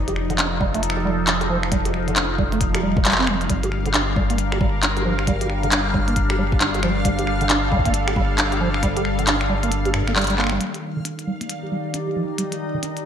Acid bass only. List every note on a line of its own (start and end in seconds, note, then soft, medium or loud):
0.08 0.13 G4 medium
0.30 0.33 D3 medium
0.38 0.47 D4 medium
0.61 0.66 G3 loud
0.74 0.82 A3 medium
0.97 1.02 G4 medium
1.05 1.10 G3 medium
1.27 1.32 D4 loud
1.41 1.46 G4 medium
1.49 1.58 F3 medium
1.72 1.77 G3 medium
1.86 1.91 G4 medium
2.08 2.11 D3 medium
2.16 2.24 D4 medium
2.38 2.43 G3 loud
2.52 2.60 A3 medium
2.75 2.80 G4 medium
2.83 2.95 G3 medium
2.97 3.00 G3 medium
3.05 3.13 G3 medium
3.19 3.29 C4 medium
3.28 3.36 G3 loud
3.50 3.55 G3 medium
3.64 3.68 G4 medium
3.86 3.89 D3 medium
3.94 4.02 D4 medium
4.16 4.21 G3 loud
4.30 4.38 A#3 medium
4.52 4.57 G4 medium
4.61 4.66 G3 medium
4.83 4.88 D4 loud
4.97 5.02 G4 medium
5.05 5.13 F3 medium
5.27 5.32 G3 medium
5.41 5.46 G4 medium
5.63 5.66 D3 medium
5.72 5.80 D4 medium
5.94 5.99 G3 loud
6.08 6.15 A#3 medium
6.30 6.35 G4 medium
6.39 6.43 G3 medium
6.61 6.66 D4 loud
6.75 6.80 G4 medium
6.83 6.91 F3 medium
7.05 7.10 G3 medium
7.19 7.24 G4 medium
7.41 7.44 D3 medium
7.50 7.58 D4 medium
7.72 7.77 G3 loud
7.86 7.93 A#3 medium
8.08 8.13 G4 medium
8.16 8.21 G3 medium
8.38 8.43 D4 loud
8.52 8.57 G4 medium
8.61 8.69 F3 medium
8.83 8.88 G3 medium
8.97 9.02 G4 medium
9.19 9.22 D3 medium
9.27 9.36 D4 medium
9.49 9.54 G3 loud
9.63 9.71 A#3 medium
9.86 9.91 G4 medium
9.94 10.02 G2 loud
10.08 10.13 A#3 medium
10.16 10.24 G3 medium
10.30 10.35 G3 medium
10.38 10.51 A#3 medium
10.52 10.60 G3 medium
10.60 10.65 G3 medium
10.74 10.79 G4 medium
10.96 11.00 D3 medium
11.05 11.13 D4 medium
11.27 11.32 G3 loud
11.41 11.49 A#3 medium
11.63 11.68 G4 medium
11.72 11.77 G3 medium
11.94 11.99 D4 loud
12.08 12.13 G4 medium
12.16 12.24 F3 medium
12.38 12.43 G3 medium
12.52 12.57 G4 medium
12.74 12.77 D3 medium
12.83 12.91 D4 medium